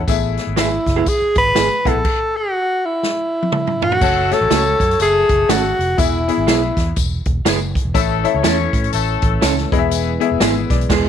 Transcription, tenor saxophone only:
0.59 E4
1.09 G#4
1.38 B4
1.88 A4
2.37 F#4
2.86 E4
3.83 F#4
4.33 A4
5.02 G#4
5.50 F#4
6.00 E4

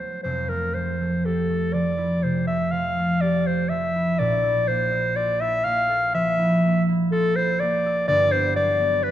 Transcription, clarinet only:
Already playing: C5
0.23 C5
0.49 A#4
0.74 C5
1.25 A4
1.73 D5
2.23 C5
2.47 E5
2.71 F5
3.21 D5
3.47 C5
3.69 E5
4.19 D5
4.68 C5
5.16 D5
5.41 E5
5.64 F5
6.14 E5
7.11 A4
7.36 C5
7.60 D5
8.08 D5
8.32 C5
8.56 D5
9.03 B4

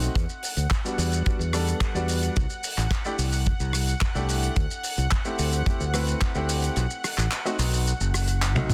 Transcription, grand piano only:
Already playing: A3 C4 D#4 F#4
0.84 G3 B3 D4 F#4
1.26 G3 B3 D4 F#4
1.53 G3 B3 D4 A4
1.95 G3 B3 D4 F#4
3.05 A3 D4 E4 G4
4.15 A3 D4 E4 G4
5.25 A3 C4 E4 G4
5.66 A3 C4 E4 G4
5.93 A3 C4 E4 B4
6.35 A3 C4 E4 G4
7.45 A3 C4 D#4 F#4
8.55 A3 C4 D#4 F#4

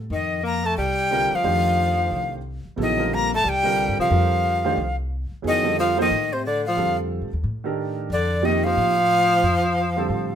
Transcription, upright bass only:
0.10 F2
0.78 C2
1.32 muted upright bass stroke
1.44 F2
2.11 C2
2.65 muted upright bass stroke
2.78 A#1
3.44 C2
3.89 G2
3.99 C3
4.11 F2
4.77 C2
5.31 muted upright bass stroke
5.44 F2
6.11 A2
6.77 F2
7.22 A2
7.33 D#2
7.44 A2
8.10 F2
8.77 A2
9.43 F2
10.10 A2

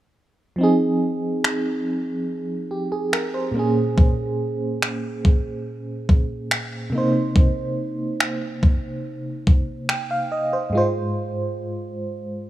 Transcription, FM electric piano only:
0.56 F3 C4
0.61 D#4 G#4
2.71 G4
2.92 G#4
3.13 A#4
3.34 C5
3.51 A#2 A#3
3.57 C#4 G#4
6.90 C3 A#3
6.95 D#4 C5
9.90 G5
10.11 F5
10.32 D#5
10.53 C5
10.70 G#2 G#3
10.75 F4 C5

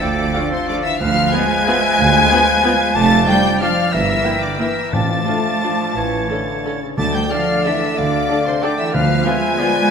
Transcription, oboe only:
Already playing: A4
1.01 B4
2.95 D5
3.62 D5
3.93 A#4
4.60 A#4
4.94 D5
5.97 C#5
6.97 D5
7.31 D5
7.97 D5
8.64 D5
8.94 B4
9.26 B4

